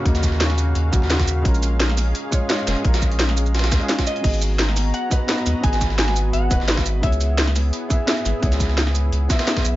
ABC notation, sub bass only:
X:1
M:4/4
L:1/16
Q:"Swing 16ths" 1/4=172
K:G#m
V:1 name="Sub bass" clef=bass
D,,8 D,,2 A,,, D,,4- D,, | A,,,8 z6 ^E,,, z | A,,,8- A,,,2 D,, z4 z | G,,,8 z6 D,, z |
G,,,8 G,,,2 D,,, G,,,4- G,,, | C,,8 z6 G,,, z | C,,8 C,,2 z4 B,,, z |]